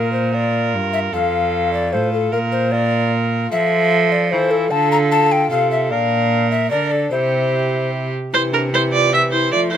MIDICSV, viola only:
0, 0, Header, 1, 2, 480
1, 0, Start_track
1, 0, Tempo, 398406
1, 1366, Time_signature, 3, 2, 24, 8
1, 7601, Tempo, 403226
1, 11722, End_track
2, 0, Start_track
2, 0, Title_t, "Viola"
2, 0, Program_c, 0, 41
2, 0, Note_on_c, 0, 70, 69
2, 399, Note_off_c, 0, 70, 0
2, 407, Note_on_c, 0, 70, 79
2, 1358, Note_on_c, 0, 69, 77
2, 1376, Note_off_c, 0, 70, 0
2, 2311, Note_off_c, 0, 69, 0
2, 2318, Note_on_c, 0, 69, 63
2, 2797, Note_on_c, 0, 70, 72
2, 2815, Note_off_c, 0, 69, 0
2, 3275, Note_off_c, 0, 70, 0
2, 3282, Note_on_c, 0, 70, 76
2, 4224, Note_off_c, 0, 70, 0
2, 4235, Note_on_c, 0, 69, 85
2, 5150, Note_off_c, 0, 69, 0
2, 5195, Note_on_c, 0, 69, 80
2, 5659, Note_off_c, 0, 69, 0
2, 5666, Note_on_c, 0, 69, 88
2, 6613, Note_off_c, 0, 69, 0
2, 6634, Note_on_c, 0, 69, 77
2, 7124, Note_on_c, 0, 70, 85
2, 7142, Note_off_c, 0, 69, 0
2, 8078, Note_off_c, 0, 70, 0
2, 8086, Note_on_c, 0, 70, 79
2, 8316, Note_on_c, 0, 69, 70
2, 8333, Note_off_c, 0, 70, 0
2, 8560, Note_off_c, 0, 69, 0
2, 8585, Note_on_c, 0, 67, 85
2, 9759, Note_off_c, 0, 67, 0
2, 10018, Note_on_c, 0, 72, 106
2, 10112, Note_off_c, 0, 72, 0
2, 10251, Note_on_c, 0, 70, 83
2, 10346, Note_off_c, 0, 70, 0
2, 10496, Note_on_c, 0, 72, 101
2, 10590, Note_off_c, 0, 72, 0
2, 10723, Note_on_c, 0, 74, 103
2, 10959, Note_off_c, 0, 74, 0
2, 10970, Note_on_c, 0, 76, 92
2, 11064, Note_off_c, 0, 76, 0
2, 11187, Note_on_c, 0, 72, 93
2, 11419, Note_off_c, 0, 72, 0
2, 11426, Note_on_c, 0, 74, 109
2, 11522, Note_off_c, 0, 74, 0
2, 11659, Note_on_c, 0, 72, 104
2, 11722, Note_off_c, 0, 72, 0
2, 11722, End_track
0, 0, End_of_file